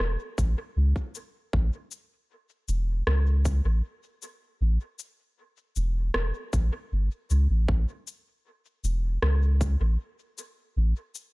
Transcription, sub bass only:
0.00 0.17 E1 loud
0.38 0.55 A1 loud
0.76 0.93 C#2 medium
1.53 1.70 A1 loud
2.68 3.02 E1 loud
3.07 3.61 C#2 medium
3.65 3.82 A1 medium
4.61 4.78 A1 loud
5.76 6.10 E1 loud
6.15 6.32 E1 medium
6.53 6.70 A1 loud
6.92 7.09 G1 medium
7.30 7.47 C#2 medium
7.50 7.66 A1 medium
7.68 7.86 A1 loud
8.84 9.18 E1 loud
9.22 9.76 C#2 medium
9.80 9.97 A1 medium
10.76 10.93 A1 loud

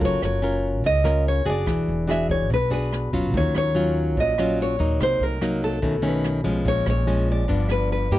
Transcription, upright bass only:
0.01 0.21 F#1 medium
0.23 0.84 F#1 medium
0.84 1.43 C#2 medium
1.46 1.67 F#1 medium
1.67 1.87 E1 medium
1.88 2.50 E1 medium
2.50 3.09 B1 medium
3.14 3.34 E1 medium
3.34 3.53 D#2 medium
3.54 4.17 D#2 medium
4.17 4.76 A#1 medium
4.80 5.01 D#2 medium
5.01 5.20 C2 medium
5.20 5.82 C2 medium
5.82 6.41 B1 medium
6.45 6.66 B1 medium
6.66 6.85 A#1 medium
6.86 7.49 A#1 medium
7.49 8.07 G1 medium
8.11 8.19 G2 medium

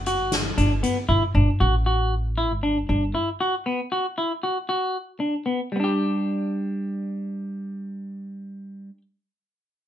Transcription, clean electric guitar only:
0.07 0.34 F#4 medium
0.58 0.71 D4 medium
0.83 0.97 B3 medium
1.09 1.22 E4 medium
1.35 1.49 D4 medium
1.60 1.74 F#4 medium
1.86 2.14 F#4 medium
2.38 2.51 E4 medium
2.63 2.77 D4 medium
2.89 3.03 D4 medium
3.15 3.28 E4 medium
3.41 3.54 F#4 medium
3.66 3.80 B3 medium
3.92 4.06 F#4 medium
4.18 4.32 E4 medium
4.43 4.57 F#4 medium
4.69 4.97 F#4 medium
5.20 5.34 D4 medium
5.46 5.60 B3 medium
5.72 8.90 G3 medium
5.72 5.79 B3 medium
5.80 8.97 D4 medium
5.84 9.01 G4 medium

